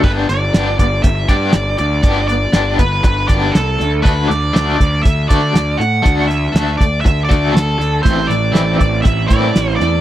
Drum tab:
CC |x-------|--------|--------|--------|
HH |-xxxxxxx|xxxxxxxx|xxxxxxxx|xxxxxxxx|
SD |--o---o-|--o---o-|--o---o-|--o---o-|
BD |o--ooo--|o--ooo--|o--ooo--|o--ooo--|

CC |--------|
HH |xxxxxxxx|
SD |--o---o-|
BD |o--ooo--|